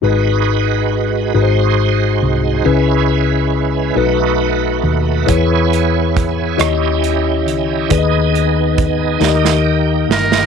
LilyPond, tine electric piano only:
\new Staff \with { instrumentName = "Tine electric piano" } { \time 6/8 \key gis \minor \tempo 4. = 46 <gis, dis' fis' gis' b'>4. <gis, dis' fis' gis' b' bis'>4. | <cis cis' e' gis' b'>4. <b, dis' fis' a' b'>4. | <e e' gis' b' cis''>4. <dis e' g' cis'' dis''>4. | <dis dis' gis' b' d'' dis''>4. <dis dis' g' ais' d'' dis''>4. | }